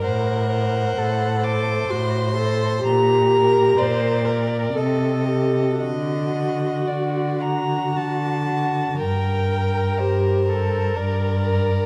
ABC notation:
X:1
M:3/4
L:1/8
Q:1/4=62
K:Gm
V:1 name="Violin"
^f3 d' c'2 | b2 d2 e2 | e2 d b a2 | g2 c2 d2 |]
V:2 name="Violin"
c c2 c2 c | z B2 B A A | z ^F2 F2 F | B B2 B2 B |]
V:3 name="Viola"
B2 A2 ^F A | G2 c B A G | ^F4- F z | B2 G A B2 |]
V:4 name="Cello" clef=bass
A,,2 A,,2 A,,2 | B,,2 B,,2 C,2 | D,2 D,2 D,2 | G,,2 G,,2 G,,2 |]